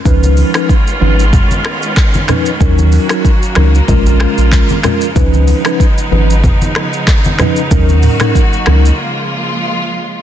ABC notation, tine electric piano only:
X:1
M:4/4
L:1/16
Q:"Swing 16ths" 1/4=94
K:Dbmix
V:1 name="Tine electric piano"
[F,DEc]3 [F,DEc] z2 [F,DEc] z6 z [F,DEc] z | [G,DEB]3 [G,DEB] z2 [G,DEB] z [A,DFB]6 [A,DFB] z | [F,DEc]3 [F,DEc] z2 [F,DEc] z6 z [F,DEc] z | [G,DEB]3 [G,DEB] z2 [G,DEB] z8 z |]